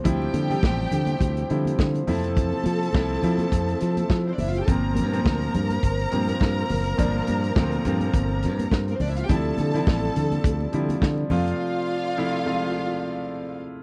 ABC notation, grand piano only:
X:1
M:4/4
L:1/16
Q:"Swing 16ths" 1/4=104
K:Gdor
V:1 name="Grand piano" clef=bass
[C,F,G,E]2 z [C,F,G,G]4- [C,F,G,G] z2 [C,F,G,E]4 [C,F,A,E]2- | [C,F,A,E]3 z [C,F,A,E] z [C,F,A,E]6 z4 | [B,,F,B,C]2 z [B,,F,B,C]4- [B,,F,B,C] z2 [B,,F,B,C]4 z2 | [B,,F,B,D]3 z [B,,F,A,C] z [B,,F,B,C]6 z4 |
[C,F,G,E]2 z [C,F,G,E]4- [C,F,G,E] z2 [C,F,G,E]4 [C,F,A,F]2- | [C,F,A,F]3 z [C,F,A,E] z [C,F,_A,=A,F]6 z4 |]